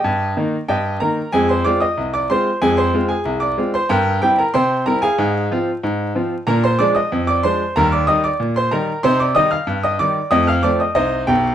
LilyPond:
<<
  \new Staff \with { instrumentName = "Grand piano" } { \time 2/4 \key f \dorian \tempo 4 = 94 <g' ees'' g''>8 r8 <g' ees'' g''>8 <bes' bes''>8 | <aes' aes''>16 <c'' c'''>16 <d'' d'''>16 <ees'' ees'''>8 <d'' d'''>16 <c'' c'''>8 | <aes' aes''>16 <c'' c'''>8 <aes' aes''>8 <d'' d'''>8 <c'' c'''>16 | <bes' g'' bes''>8 <g' g''>16 <bes' bes''>16 <c'' g'' c'''>8 <bes' bes''>16 <aes' f'' aes''>16~ |
<aes' f'' aes''>8 r4. | <bes' bes''>16 <c'' c'''>16 <d'' d'''>16 <ees'' ees'''>8 <d'' d'''>16 <c'' c'''>8 | <bes' bes''>16 <d'' d'''>16 <ees'' ees'''>16 <d'' d'''>8 <c'' c'''>16 <bes' bes''>8 | <c'' c'''>16 <d'' d'''>16 <ees'' ees'''>16 <f'' f'''>8 <ees'' ees'''>16 <d'' d'''>8 |
<ees'' ees'''>16 <f'' f'''>16 <d'' d'''>16 <ees'' ees'''>16 <ees' c'' ees''>8 <g' g''>8 | }
  \new Staff \with { instrumentName = "Grand piano" } { \clef bass \time 2/4 \key f \dorian g,8 <ees bes ees'>8 g,8 <ees bes ees'>8 | <f, aes>8 <aes c' f'>8 c,8 <aes c' f'>8 | <f, aes>8 <aes c' f'>8 c,8 <aes c' f'>8 | g,8 <g c' e'>8 c8 <g c' e'>8 |
aes,8 <f c' f'>8 aes,8 <f c' f'>8 | <bes, d'>8 <f aes d'>8 f,8 <f aes d'>8 | <ees, g>8 <ees g ees'>8 bes,8 <ees g ees'>8 | <c ees'>8 <ees g ees'>8 g,8 <ees g ees'>8 |
<f, a>8 <f a c'>8 c,8 <ces, ces>8 | }
>>